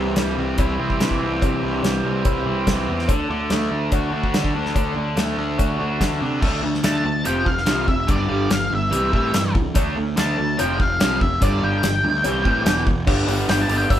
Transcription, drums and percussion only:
0.16 snare, closed hi-hat, cowbell
0.58 kick, closed hi-hat, cowbell
0.90 kick
1.01 snare, closed hi-hat, cowbell
1.11 kick
1.42 kick, closed hi-hat, cowbell
1.83 snare, closed hi-hat, cowbell
2.25 kick, closed hi-hat, cowbell
2.66 kick, snare, closed hi-hat, cowbell
2.99 snare
3.08 kick, closed hi-hat, cowbell
3.50 snare, closed hi-hat, cowbell
3.92 kick, closed hi-hat, cowbell
4.24 kick
4.34 snare, closed hi-hat, cowbell
4.44 kick
4.66 snare
4.76 kick, closed hi-hat, cowbell
5.17 snare, closed hi-hat, cowbell
5.59 kick, closed hi-hat, cowbell
6.01 kick, snare, closed hi-hat, cowbell
6.42 kick, crash
6.74 snare
6.84 snare, closed hi-hat
7.25 closed hi-hat
7.46 kick
7.58 snare
7.66 snare, closed hi-hat
7.88 kick
8.08 kick, closed hi-hat
8.51 snare, closed hi-hat
8.93 closed hi-hat
9.13 kick
9.34 snare, closed hi-hat
9.55 kick
9.75 kick, closed hi-hat, cowbell
10.17 snare, closed hi-hat, cowbell
10.59 closed hi-hat, cowbell
10.80 kick
11.01 snare, closed hi-hat, cowbell
11.21 kick
11.42 kick, closed hi-hat, cowbell
11.83 snare, closed hi-hat, cowbell
12.24 closed hi-hat, cowbell
12.45 kick
12.66 snare, closed hi-hat, cowbell
12.87 kick
13.07 kick, crash, cowbell
13.28 open hi-hat, cowbell
13.49 snare, open hi-hat, cowbell
13.70 open hi-hat
13.90 kick, open hi-hat, cowbell

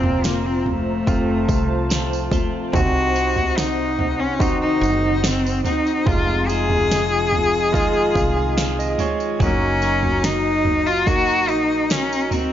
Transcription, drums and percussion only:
0.04 floor tom
0.24 snare, tambourine
0.66 floor tom
1.07 kick, floor tom, tambourine
1.49 kick, tambourine
1.90 snare, tambourine
2.13 tambourine
2.32 kick, floor tom, tambourine
2.73 kick, floor tom, tambourine
3.16 tambourine
3.36 floor tom, tambourine
3.58 snare, tambourine
3.99 floor tom
4.40 kick, floor tom, tambourine
4.83 tambourine
5.24 snare, tambourine
5.46 tambourine
5.65 floor tom, tambourine
5.87 tambourine
6.06 kick, floor tom, tambourine
6.49 tambourine
6.70 floor tom
6.91 snare, tambourine
7.33 floor tom
7.54 tambourine
7.74 kick, floor tom, tambourine
8.15 kick, tambourine
8.58 snare, tambourine
8.80 tambourine
8.99 floor tom, tambourine
9.20 tambourine
9.40 kick, floor tom, tambourine
9.82 tambourine
10.03 floor tom
10.24 snare, tambourine
10.65 floor tom
10.86 tambourine
11.06 kick, floor tom, tambourine
11.49 tambourine
11.90 snare, tambourine
12.13 tambourine
12.31 floor tom, tambourine

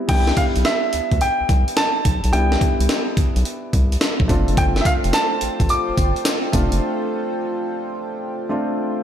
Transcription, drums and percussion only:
0.09 kick, closed hi-hat, crash
0.28 snare
0.37 kick, closed hi-hat
0.56 closed hi-hat
0.65 snare, closed hi-hat
0.93 closed hi-hat
1.12 kick, closed hi-hat
1.21 closed hi-hat
1.49 kick, closed hi-hat
1.68 closed hi-hat
1.77 snare, closed hi-hat
2.05 kick, closed hi-hat
2.24 closed hi-hat
2.33 closed hi-hat
2.52 snare
2.61 kick, closed hi-hat
2.81 closed hi-hat
2.89 snare, closed hi-hat
3.17 kick, closed hi-hat
3.36 closed hi-hat
3.45 closed hi-hat
3.73 kick, closed hi-hat
3.92 closed hi-hat
4.01 snare, closed hi-hat
4.20 kick
4.29 kick, closed hi-hat
4.48 closed hi-hat
4.57 kick, closed hi-hat, tambourine
4.76 snare
4.85 kick, closed hi-hat, tambourine
5.04 closed hi-hat
5.13 snare, closed hi-hat, tambourine
5.41 closed hi-hat
5.60 kick, closed hi-hat
5.69 closed hi-hat, tambourine
5.97 kick, closed hi-hat, tambourine
6.16 closed hi-hat
6.25 snare, closed hi-hat, tambourine
6.53 kick, closed hi-hat, tambourine
6.72 closed hi-hat

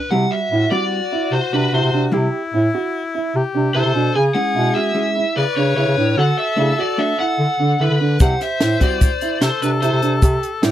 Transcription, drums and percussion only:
8.20 kick, closed hi-hat, shaker
8.41 snare, closed hi-hat
8.61 snare, closed hi-hat
8.81 kick, closed hi-hat
9.01 kick, closed hi-hat, shaker
9.21 closed hi-hat
9.41 snare, closed hi-hat
9.62 closed hi-hat, shaker
9.82 closed hi-hat
10.02 closed hi-hat
10.22 kick, closed hi-hat, shaker
10.43 closed hi-hat
10.63 snare, closed hi-hat

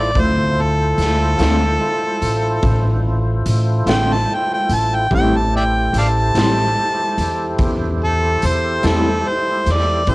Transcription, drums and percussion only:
0.15 kick, closed hi-hat
0.98 snare, closed hi-hat
1.39 snare, closed hi-hat
2.22 closed hi-hat
2.63 kick, closed hi-hat
3.46 closed hi-hat
3.87 snare, closed hi-hat
4.69 closed hi-hat
5.11 kick, closed hi-hat
5.94 closed hi-hat
6.35 snare, closed hi-hat
7.18 closed hi-hat
7.59 kick, closed hi-hat
8.42 closed hi-hat
8.83 snare, closed hi-hat
9.66 snare, closed hi-hat
10.07 kick, closed hi-hat

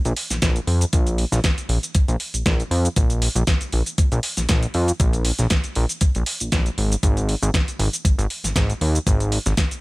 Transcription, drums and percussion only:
0.05 closed hi-hat, cabasa
0.17 open hi-hat
0.30 snare, closed hi-hat, cabasa
0.42 kick, snare, closed hi-hat, cabasa
0.56 closed hi-hat, cabasa
0.67 open hi-hat
0.81 closed hi-hat, cabasa
0.93 kick, closed hi-hat, cabasa
1.07 closed hi-hat, cabasa
1.18 open hi-hat
1.32 snare, closed hi-hat, cabasa
1.44 kick, snare, closed hi-hat, cabasa
1.58 closed hi-hat, cabasa
1.69 open hi-hat
1.83 closed hi-hat, cabasa
1.95 kick, closed hi-hat, cabasa
2.08 closed hi-hat, cabasa
2.20 open hi-hat
2.34 closed hi-hat, cabasa
2.46 kick, snare, closed hi-hat, cabasa
2.60 closed hi-hat, cabasa
2.71 open hi-hat
2.85 closed hi-hat, cabasa
2.96 kick, closed hi-hat, cabasa
3.10 closed hi-hat, cabasa
3.22 open hi-hat
3.36 closed hi-hat, cabasa
3.47 kick, snare, closed hi-hat, cabasa
3.61 closed hi-hat, cabasa
3.72 open hi-hat
3.86 closed hi-hat, cabasa
3.98 kick, closed hi-hat, cabasa
4.12 closed hi-hat, cabasa
4.23 open hi-hat
4.37 snare, closed hi-hat, cabasa
4.49 kick, snare, closed hi-hat, cabasa
4.63 closed hi-hat, cabasa
4.74 open hi-hat
4.88 closed hi-hat, cabasa
5.00 kick, closed hi-hat, cabasa
5.13 closed hi-hat, cabasa
5.25 open hi-hat
5.38 snare, closed hi-hat, cabasa
5.50 kick, snare, closed hi-hat, cabasa
5.64 closed hi-hat, cabasa
5.75 open hi-hat
5.89 closed hi-hat, cabasa
6.01 kick, closed hi-hat, cabasa
6.15 closed hi-hat, cabasa
6.26 open hi-hat
6.40 closed hi-hat, cabasa
6.52 kick, snare, closed hi-hat, cabasa
6.66 closed hi-hat, cabasa
6.78 open hi-hat
6.92 closed hi-hat, cabasa
7.03 kick, closed hi-hat, cabasa
7.17 closed hi-hat, cabasa
7.29 open hi-hat
7.42 closed hi-hat, cabasa
7.54 kick, snare, closed hi-hat, cabasa
7.68 closed hi-hat, cabasa
7.79 open hi-hat
7.93 closed hi-hat, cabasa
8.05 kick, closed hi-hat, cabasa
8.19 closed hi-hat, cabasa
8.30 open hi-hat
8.44 snare, closed hi-hat, cabasa
8.56 kick, snare, closed hi-hat, cabasa
8.70 closed hi-hat, cabasa
8.81 open hi-hat
8.95 closed hi-hat, cabasa
9.07 kick, closed hi-hat, cabasa
9.20 closed hi-hat, cabasa
9.32 open hi-hat
9.46 snare, closed hi-hat, cabasa
9.57 kick, snare, closed hi-hat, cabasa
9.71 closed hi-hat, cabasa

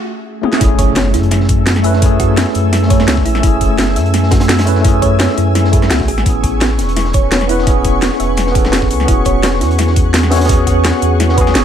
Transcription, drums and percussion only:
0.43 high tom
0.53 snare
0.61 kick, closed hi-hat
0.79 kick, closed hi-hat
0.95 snare, closed hi-hat
1.05 snare
1.14 snare, closed hi-hat
1.23 closed hi-hat
1.31 snare, closed hi-hat
1.41 snare
1.49 kick, closed hi-hat
1.66 snare, closed hi-hat
1.76 snare
1.84 closed hi-hat, open hi-hat
1.93 snare
2.02 kick, closed hi-hat
2.20 kick, closed hi-hat
2.37 snare, closed hi-hat
2.47 snare
2.55 closed hi-hat
2.73 snare, closed hi-hat
2.83 snare
2.90 kick, closed hi-hat
3.00 snare
3.08 snare, closed hi-hat
3.17 kick, snare
3.25 closed hi-hat, open hi-hat
3.35 snare
3.43 kick, closed hi-hat
3.61 kick, closed hi-hat
3.79 snare, closed hi-hat
3.87 snare
3.96 snare, closed hi-hat
4.06 closed hi-hat
4.14 snare, closed hi-hat
4.23 snare
4.31 kick, snare, closed hi-hat
4.40 snare, closed hi-hat
4.48 snare, closed hi-hat
4.59 snare, closed hi-hat
4.66 closed hi-hat, open hi-hat
4.75 snare
4.85 kick, closed hi-hat
5.02 kick, closed hi-hat
5.19 snare, closed hi-hat
5.29 snare
5.37 closed hi-hat
5.55 snare, closed hi-hat
5.65 snare
5.73 kick, closed hi-hat
5.82 snare
5.90 snare, closed hi-hat
6.00 kick, snare
6.08 closed hi-hat, open hi-hat
6.18 snare
6.26 kick, closed hi-hat
6.44 kick, closed hi-hat
6.61 snare, closed hi-hat
6.70 snare
6.78 snare, closed hi-hat
6.89 closed hi-hat
6.96 snare, closed hi-hat
7.05 snare
7.13 kick, closed hi-hat
7.31 snare, closed hi-hat
7.41 snare
7.49 closed hi-hat, open hi-hat
7.59 snare
7.67 kick, closed hi-hat
7.85 kick, closed hi-hat
8.02 snare, closed hi-hat
8.12 snare
8.20 closed hi-hat
8.37 snare, closed hi-hat
8.47 snare
8.55 kick, closed hi-hat
8.65 snare
8.72 snare, closed hi-hat
8.82 kick, snare
8.90 closed hi-hat, open hi-hat
9.00 snare
9.08 kick, closed hi-hat
9.25 kick, closed hi-hat
9.43 snare, closed hi-hat
9.53 snare
9.61 snare, closed hi-hat
9.71 closed hi-hat
9.78 snare, closed hi-hat
9.87 snare
9.96 kick, closed hi-hat
10.14 snare, closed hi-hat
10.23 snare
10.31 snare, closed hi-hat, open hi-hat
10.36 snare, closed hi-hat
10.40 snare, closed hi-hat
10.45 snare, closed hi-hat
10.49 kick, closed hi-hat
10.67 kick, closed hi-hat
10.84 snare, closed hi-hat
10.93 snare
11.02 closed hi-hat
11.20 snare, closed hi-hat
11.29 snare
11.38 kick, closed hi-hat
11.47 snare
11.55 snare, closed hi-hat

